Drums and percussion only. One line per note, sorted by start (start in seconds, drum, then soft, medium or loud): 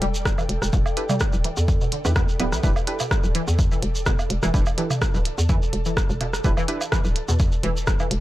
0.02 closed hi-hat medium
0.15 shekere medium
0.25 kick loud
0.25 cross-stick medium
0.25 shekere medium
0.38 low woodblock medium
0.38 shekere soft
0.49 closed hi-hat loud
0.62 cross-stick medium
0.62 shekere medium
0.73 kick loud
0.73 shekere medium
0.86 low woodblock medium
0.86 shekere soft
0.97 closed hi-hat medium
1.09 mid tom medium
1.09 low woodblock medium
1.09 shekere medium
1.20 kick loud
1.20 cross-stick medium
1.20 closed hi-hat soft
1.20 shekere medium
1.33 shekere soft
1.44 closed hi-hat medium
1.57 shekere medium
1.68 kick loud
1.68 shekere medium
1.81 shekere soft
1.92 closed hi-hat medium
2.05 shekere medium
2.16 kick loud
2.16 cross-stick medium
2.16 shekere medium
2.29 shekere soft
2.40 closed hi-hat loud
2.40 low woodblock medium
2.52 cross-stick medium
2.52 shekere medium
2.63 kick loud
2.63 shekere medium
2.76 low woodblock medium
2.76 shekere soft
2.87 closed hi-hat medium
2.99 low woodblock medium
2.99 shekere medium
3.11 kick loud
3.11 cross-stick medium
3.11 shekere medium
3.24 shekere soft
3.35 closed hi-hat medium
3.48 shekere medium
3.59 kick loud
3.59 shekere medium
3.72 shekere soft
3.83 closed hi-hat medium
3.95 shekere medium
4.06 kick loud
4.06 cross-stick medium
4.06 shekere medium
4.19 low woodblock medium
4.19 shekere soft
4.30 closed hi-hat medium
4.43 cross-stick medium
4.43 shekere medium
4.54 kick loud
4.54 shekere medium
4.66 low woodblock medium
4.66 shekere soft
4.78 closed hi-hat medium
4.91 mid tom medium
4.91 low woodblock medium
4.91 shekere medium
5.02 kick loud
5.02 cross-stick medium
5.02 shekere medium
5.14 shekere soft
5.25 closed hi-hat medium
5.38 shekere medium
5.49 kick loud
5.49 shekere medium
5.63 shekere soft
5.73 closed hi-hat medium
5.85 shekere medium
5.97 kick loud
5.97 cross-stick medium
5.97 shekere medium
6.10 shekere soft
6.21 closed hi-hat medium
6.21 low woodblock soft
6.33 cross-stick medium
6.33 shekere medium
6.44 kick loud
6.44 shekere medium
6.57 low woodblock medium
6.57 shekere soft
6.68 closed hi-hat medium
6.81 low woodblock medium
6.81 shekere medium
6.92 kick loud
6.92 cross-stick medium
6.92 shekere medium
7.04 shekere soft
7.16 closed hi-hat medium
7.29 shekere medium
7.39 kick loud
7.39 shekere medium
7.52 shekere soft
7.63 closed hi-hat medium
7.77 shekere medium
7.87 kick loud
7.87 cross-stick medium
7.87 shekere medium
7.99 low woodblock medium
7.99 shekere soft
8.11 closed hi-hat medium